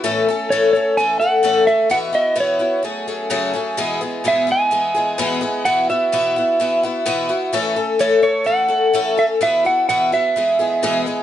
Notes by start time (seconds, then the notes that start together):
0.04 A2 E3 A3 C#4 A4
0.29 A3 C#4 A4
0.50 A2 E3 A3 C#4 A4 C#5
0.73 A3 C#4 A4 C#5
0.97 E3 A3 C#4 A4 G#5
1.20 C#4 A4 F#5
1.24 A3
1.43 A2 E3 A3 C#4 A4
1.67 A3 A4 E5
1.89 B2 E3 B3 E4 F#4 F#5
2.13 B3 E4 F#4 D#5
2.35 B2 E3 B3 E4 F#4
2.40 C#5
2.59 B3 E4 F#4
2.83 F#3 A3 C#4 G#4
3.08 F#3 A3 C#4 G#4
3.30 F#2 C#3 F#3 A3 C#4 G#4
3.54 F#3 A3 C#4 G#4
3.77 E2 B2 E3 G#3 B3 G#4
4.01 E3 G#3 B3 G#4
4.24 E2 B2 E3 G#3 B3 G#4 E5
4.47 E3 G#3 B3 G#4
4.52 G#5
4.71 E3 G#3 B3 G#4
4.95 E3 G#3 B3 G#4
5.18 E2 B2 E3 G#3 B3 G#4
5.29 F#5
5.41 E3 G#3 B3 G#4
5.65 B2 E3 B3 E4 F#4 F#5
5.90 B3 E4 F#4 E5
6.12 B2 E3 B3 E4 F#4
6.36 B3 E4 F#4
6.60 E3 B3 E4 F#4
6.83 B3 E4 F#4
7.06 B2 E3 B3 E4 F#4
7.29 B3 E4 F#4
7.53 A2 E3 A3 C#4 A4
7.76 A3 C#4 A4
7.99 A2 E3 A3 C#4 A4 C#5
8.23 A3 A4 C#5
8.44 E3 A3 C#4 A4 F#5
8.68 A3 C#4 A4
8.93 A2 E3 A3 C#4 A4
9.17 A3 C#4 A4 E5
9.41 B2 E3 B3 E4 F#4 E5
9.65 B3 E4 F#4 F#5
9.89 B2 E3 B3 E4 F#4 F#5
10.12 B3 E4 F#4 E5
10.36 E3 G#3 B3 G#4
10.59 E3 G#3 B3 G#4
10.83 E2 B2 E3 G#3 B3 G#4
11.06 E3 G#3 B3 G#4